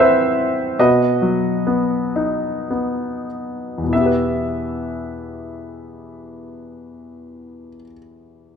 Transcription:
Already playing: A2 E3 C4 E4 F#5 G5
0.00 B4 C5 E5
0.79 B2 F#4 B4 D#5
1.22 F#3
1.67 B3
2.16 D#4
2.70 B3
3.78 E2
3.84 B2
3.89 E3 E5
3.95 B3
4.00 G4
4.06 B4

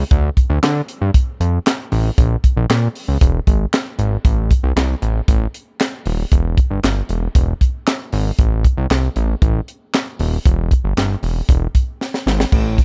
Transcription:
0.11 D2, kick, closed hi-hat
0.37 kick, closed hi-hat
0.50 D2
0.63 D3, snare, clap, closed hi-hat
0.88 closed hi-hat
1.01 G2
1.14 kick, closed hi-hat
1.40 F2, closed hi-hat
1.66 snare, clap, closed hi-hat
1.92 A1, open hi-hat
2.18 A#1, kick, closed hi-hat
2.44 kick, closed hi-hat
2.57 A#1
2.70 A#2, snare, clap, closed hi-hat
2.95 open hi-hat
3.08 C#2
3.21 E1, kick, closed hi-hat
3.47 G#1, kick, closed hi-hat
3.73 snare, clap, closed hi-hat
3.99 G#1, closed hi-hat
4.25 A1, kick, closed hi-hat
4.51 kick, closed hi-hat
4.63 C2
4.76 C2, snare, clap, closed hi-hat
5.02 A1, closed hi-hat
5.28 A1, kick, closed hi-hat
5.54 closed hi-hat
5.80 snare, clap, closed hi-hat
6.05 D#1, open hi-hat
6.32 E1, kick, closed hi-hat
6.58 kick, closed hi-hat
6.70 G1
6.83 G1, snare, clap, closed hi-hat
7.09 E1, closed hi-hat
7.35 E1, kick, closed hi-hat
7.61 kick, closed hi-hat
7.87 snare, clap, closed hi-hat
8.12 G#1, open hi-hat
8.39 A1, kick, closed hi-hat
8.64 kick, closed hi-hat
8.77 C2
8.90 C2, snare, clap, closed hi-hat
9.16 A1, closed hi-hat
9.42 A1, kick, closed hi-hat
9.68 closed hi-hat
9.94 snare, clap, closed hi-hat
10.19 D#1, open hi-hat
10.45 E1, kick, closed hi-hat
10.71 kick, closed hi-hat
10.84 G1
10.97 G1, snare, clap, closed hi-hat
11.23 E1, open hi-hat
11.49 E1, kick, closed hi-hat
11.75 kick, closed hi-hat
12.01 snare
12.14 snare
12.26 G#1, snare
12.40 snare
12.52 A1, kick, crash
12.78 kick, closed hi-hat

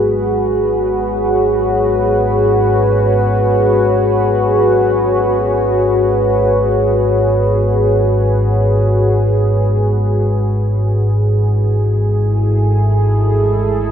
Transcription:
Already playing: G#1 G#2 F#4 G#4 B4 C#5
9.28 G#4
10.20 E4
11.54 A4
12.45 D#5

